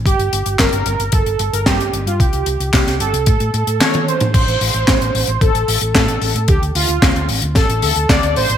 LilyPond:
<<
  \new Staff \with { instrumentName = "Analog polysynth" } { \time 4/4 \key a \phrygian \tempo 4 = 112 g'4 bes'4 a'8. bes'16 g'8. f'16 | g'4 g'8 a'4. cis''8 c''8~ | c''2 a'4 a'4 | g'8 f'4 r8 a'8 a'8 d''8 c''8 | }
  \new Staff \with { instrumentName = "Fingered electric bass" } { \clef bass \time 4/4 \key a \phrygian g,,16 g,,16 g,,16 g,,16 g,,16 g,,16 g,,16 g,,16 g,,16 g,,16 g,,16 g,,16 g,16 g,,16 g,,16 g,16 | c,16 c,16 c,16 c,16 c,16 c,16 g,,16 c,16 a,16 a,16 a,16 a,16 r4 | a,,16 a,,16 a,,16 a,,16 a,,16 a,,16 a,,16 a,,16 a,,16 a,,16 a,,16 a,,16 a,16 a,,16 a,,16 a,16 | d,16 d,16 d,16 d,16 d,16 d,16 a,,16 d,16 a,,16 a,,16 d,16 d,16 d,16 d,16 a,,16 a,,16 | }
  \new DrumStaff \with { instrumentName = "Drums" } \drummode { \time 4/4 <hh bd>16 hh16 hh16 hh16 <hc hh bd sn>16 hh16 hh16 hh16 <hh bd>16 hh16 hh16 hh16 <hc hh bd sn>16 hh16 hh16 hh16 | <hh bd>16 hh16 hh16 hh16 <hc hh bd sn>16 <hh sn>16 hh16 hh16 <hh bd>16 hh16 hh16 hh16 <hc hh sn tommh>16 <hh tommh>16 hh16 <hh toml>16 | <cymc hh bd>16 hh16 hho16 hh16 <hc hh bd sn>16 hh16 hho16 hh16 <hh bd>16 hh16 hho16 hh16 <hc hh bd sn>16 hh16 hho16 hh16 | <hh bd>16 hh16 hho16 hh16 <hc hh bd sn>16 hh16 hho16 hh16 <hh bd sn>16 hh16 hho16 hh16 <hc hh bd sn>16 hh16 hho16 hh16 | }
>>